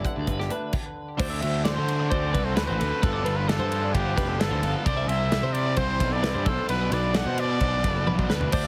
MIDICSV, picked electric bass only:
0, 0, Header, 1, 2, 480
1, 0, Start_track
1, 0, Key_signature, 1, "major"
1, 0, Tempo, 458716
1, 1243, Time_signature, 4, 2, 24, 8
1, 9073, End_track
2, 0, Start_track
2, 0, Title_t, "Picked electric bass"
2, 0, Program_c, 0, 34
2, 176, Note_on_c, 0, 38, 76
2, 283, Note_off_c, 0, 38, 0
2, 294, Note_on_c, 0, 31, 90
2, 515, Note_off_c, 0, 31, 0
2, 1250, Note_on_c, 0, 38, 80
2, 1474, Note_off_c, 0, 38, 0
2, 1496, Note_on_c, 0, 38, 92
2, 1831, Note_off_c, 0, 38, 0
2, 1866, Note_on_c, 0, 50, 77
2, 2196, Note_off_c, 0, 50, 0
2, 2218, Note_on_c, 0, 38, 105
2, 2438, Note_off_c, 0, 38, 0
2, 2460, Note_on_c, 0, 36, 95
2, 2694, Note_off_c, 0, 36, 0
2, 2694, Note_on_c, 0, 38, 92
2, 2803, Note_off_c, 0, 38, 0
2, 2823, Note_on_c, 0, 33, 114
2, 2928, Note_off_c, 0, 33, 0
2, 2942, Note_on_c, 0, 38, 113
2, 3047, Note_off_c, 0, 38, 0
2, 3174, Note_on_c, 0, 31, 100
2, 3396, Note_off_c, 0, 31, 0
2, 3411, Note_on_c, 0, 31, 92
2, 3747, Note_off_c, 0, 31, 0
2, 3756, Note_on_c, 0, 43, 90
2, 4100, Note_off_c, 0, 43, 0
2, 4128, Note_on_c, 0, 31, 104
2, 4352, Note_off_c, 0, 31, 0
2, 4376, Note_on_c, 0, 29, 93
2, 4591, Note_off_c, 0, 29, 0
2, 4591, Note_on_c, 0, 31, 105
2, 4710, Note_off_c, 0, 31, 0
2, 4722, Note_on_c, 0, 38, 118
2, 4827, Note_off_c, 0, 38, 0
2, 4833, Note_on_c, 0, 31, 111
2, 4951, Note_off_c, 0, 31, 0
2, 5089, Note_on_c, 0, 36, 90
2, 5301, Note_off_c, 0, 36, 0
2, 5307, Note_on_c, 0, 36, 101
2, 5654, Note_off_c, 0, 36, 0
2, 5675, Note_on_c, 0, 48, 88
2, 6018, Note_off_c, 0, 48, 0
2, 6044, Note_on_c, 0, 36, 112
2, 6270, Note_off_c, 0, 36, 0
2, 6287, Note_on_c, 0, 35, 89
2, 6520, Note_off_c, 0, 35, 0
2, 6520, Note_on_c, 0, 36, 109
2, 6634, Note_off_c, 0, 36, 0
2, 6643, Note_on_c, 0, 43, 102
2, 6756, Note_off_c, 0, 43, 0
2, 6760, Note_on_c, 0, 35, 109
2, 6875, Note_off_c, 0, 35, 0
2, 7001, Note_on_c, 0, 35, 99
2, 7225, Note_off_c, 0, 35, 0
2, 7232, Note_on_c, 0, 35, 100
2, 7577, Note_off_c, 0, 35, 0
2, 7593, Note_on_c, 0, 47, 94
2, 7937, Note_off_c, 0, 47, 0
2, 7960, Note_on_c, 0, 35, 101
2, 8188, Note_off_c, 0, 35, 0
2, 8215, Note_on_c, 0, 30, 85
2, 8448, Note_off_c, 0, 30, 0
2, 8454, Note_on_c, 0, 35, 86
2, 8664, Note_off_c, 0, 35, 0
2, 8679, Note_on_c, 0, 38, 93
2, 8896, Note_off_c, 0, 38, 0
2, 8931, Note_on_c, 0, 38, 100
2, 9073, Note_off_c, 0, 38, 0
2, 9073, End_track
0, 0, End_of_file